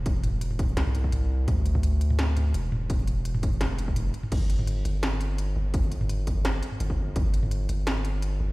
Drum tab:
CC |----------------|----------------|----------------|x---------------|
HH |x-x-x-x-x-x-x---|x-x-x-x-x-x-x---|x-x-x-x-x-x-x-x-|x-x-x-x-x-x-x---|
SH |-------x--------|----------------|-x-----x--------|----------------|
SD |--------o-------|--------o-------|--------o-------|--------o-------|
T2 |--o--o---o--o---|o--o---o--o---o-|-o---o--o---o--o|---o-----o------|
BD |o-----o----o----|o--o------------|o-----o----o----|o---------------|

CC |----------------|----------------|
HH |x-x-x-x-x-x-x---|x-x-x-x-x-x-x---|
SH |-x--------------|----------------|
SD |--------o-------|--------o-------|
T2 |---o-------o----|---o-----o------|
BD |o-----o------o--|o---------------|